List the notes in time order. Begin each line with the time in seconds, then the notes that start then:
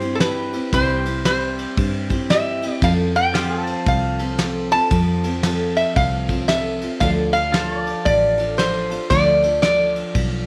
Already playing: G2 C4 E4 G4 C5
0.00 C4 E4 G4, ride
0.15 A4
0.20 G3 C4 E4 G4 B4, snare, ride
0.53 C4 E4 G4, ride
0.73 C2 C3 G3 C4 E4 G4 C5, kick, ride
1.06 C4 E4 G4, ride
1.25 G3 C4 E4 G4 C5, snare, ride
1.58 ride
1.77 G2, kick, ride
2.10 C4 E4 G4, kick, ride
2.30 G3 C4 E4 G4 E5, snare, ride
2.62 C4 E4 G4, ride
2.73 D5
2.82 F2 F3 C4 F4 A4 F5, kick, ride
3.15 F4 A4 G5, ride
3.34 F3 C4 F4 G4 A4 C5, snare, ride
3.60 A4
3.67 ride
3.86 C2 F5, kick, ride
4.19 C4 F4 A4, ride
4.38 F3 C4 F4 A4, snare, ride
4.71 C4 F4 A4 A5, ride
4.90 F2 F3 C4 F4 A4, kick, ride
5.24 C4 F4 A4, ride
5.43 F3 C4 F4 A4, snare, ride
5.77 E5, ride
5.96 C2 F5, kick, ride
6.28 C4 F4 A4, kick, ride
6.48 F3 C4 F4 A4 E5, snare, ride
6.81 C4 F4 A4, ride
7.00 D2 D3 F3 D4 F4 A4 F5, kick, ride
7.33 D4 F4 A4 F5, ride
7.52 F3 D4 F4 A4 C5, snare, ride
7.80 D5
7.87 ride
8.05 A1 D5, kick, ride
8.38 D4 F4 A4, ride
8.57 F3 D4 F4 A4 C5, snare, ride
8.90 D4 F4 A4, ride
9.10 D2 D3 F3 D4 F4 A4 D5, kick, ride
9.42 D4 F4 A4, ride
9.62 F3 D4 F4 A4 D5, snare, ride
9.96 ride
10.15 B1, kick, ride